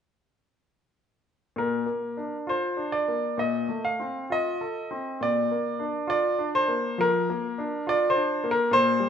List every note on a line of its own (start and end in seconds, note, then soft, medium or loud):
1.56 1.86 A#2 medium
1.56 2.35 A#4 medium
1.86 2.18 A#3 soft
2.17 2.49 D4 soft
2.47 2.79 F4 soft
2.47 2.94 C5 medium
2.77 3.09 D4 soft
2.92 3.38 D5 medium
3.08 3.39 A#3 soft
3.38 3.68 A#2 medium
3.38 3.85 D#5 medium
3.69 4.01 A3 soft
3.85 4.24 F5 medium
4.00 4.32 C4 soft
4.30 4.62 F4 soft
4.30 5.21 D#5 medium
4.61 4.92 A4 soft
4.91 5.21 C4 soft
5.21 5.49 A#2 medium
5.21 6.08 D5 medium
5.51 5.82 A#3 soft
5.79 6.11 D4 soft
6.07 6.40 F4 medium
6.07 6.48 D5 medium
6.39 6.71 D4 soft
6.55 7.00 C5 medium
6.68 7.00 A#3 soft
6.98 7.30 F3 medium
6.98 7.88 A#4 medium
7.30 7.60 A#3 medium
7.58 7.88 D4 soft
7.87 8.17 F4 medium
7.87 8.09 D5 medium
8.10 8.52 C5 medium
8.15 8.45 D4 soft
8.44 8.73 A#3 medium
8.51 8.73 A#4 medium
8.71 9.00 A#2 medium
8.71 9.09 C5 loud
9.00 9.09 G3 soft